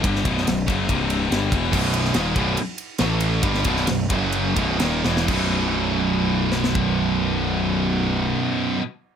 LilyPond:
<<
  \new Staff \with { instrumentName = "Distorted electric guitar" } { \clef bass \time 4/4 \tempo 4 = 130 <g, d g>8 <b,, fis, b,>8 <b,, fis,>8 <fis, cis fis>8 <c, g, c>4 <g, d g>8 <e, b, e>8 | <b,, fis, b,>4 <dis, ais, dis>8 <b,, fis, b,>8 r4 <a, e a>4 | <g, d g>8 <b,, fis, b,>8 <b,, fis,>8 <fis, cis fis>4 <b,, fis, b,>8 <dis, ais, dis>8 <e, b, e>8 | <b,, fis, b, fis dis'>1~ |
<b,, fis, b, fis dis'>1 | }
  \new Staff \with { instrumentName = "Distorted electric guitar" } { \clef bass \time 4/4 <g, d g>8 <b,, fis, b,>8 <b,, fis,>8 <fis, cis fis>8 <c, g, c>4 <g, d g>8 <e, b, e>8 | <b,, fis, b,>4 <dis, ais, dis>8 <b,, fis, b,>8 r4 <a, e a>4 | <g, d g>8 <b,, fis, b,>8 <b,, fis,>8 <fis, cis fis>4 <b,, fis, b,>8 <dis, ais, dis>8 <e, b, e>8 | <b,, fis, b,>1~ |
<b,, fis, b,>1 | }
  \new Staff \with { instrumentName = "Distorted electric guitar" } { \clef bass \time 4/4 r1 | <b,, fis, b,>4 <dis, ais, dis>8 <b,, fis, b,>8 r4 <a, e a>4 | <g, d g>8 <b,, fis, b,>8 <b,, fis,>8 <fis, cis fis>4 <b,, fis, b,>8 <dis, ais, dis>8 <e, b, e>8 | <b,, fis, b,>1~ |
<b,, fis, b,>1 | }
  \new Staff \with { instrumentName = "Picked electric bass" } { \clef bass \time 4/4 g,,8 b,,,8 b,,,8 fis,,8 c,,4 g,,8 e,,8 | b,,,4 dis,,8 b,,,8 r4 a,,4 | g,,8 b,,,8 b,,,8 fis,,4 b,,,8 dis,,8 e,,8 | b,,,1~ |
b,,,1 | }
  \new DrumStaff \with { instrumentName = "Drums" } \drummode { \time 4/4 <bd cymr>16 sn16 <bd cymr>16 sn16 <cymr sn>8 <bd cymr>8 <bd cymr>8 cymr8 <cymr sn>8 <bd cymr>8 | <cymc bd>8 cymr16 sn16 <cymr sn>8 <bd cymr>8 cymr8 cymr8 <cymr sn>8 cymr8 | <bd cymr>16 sn16 <bd cymr>16 sn16 <cymr sn>8 <bd cymr>8 cymr8 <bd cymr>8 <cymr sn>8 sn16 sn16 | <cymc bd>4 r4 r8 sn16 sn16 bd4 |
r4 r4 r4 r4 | }
>>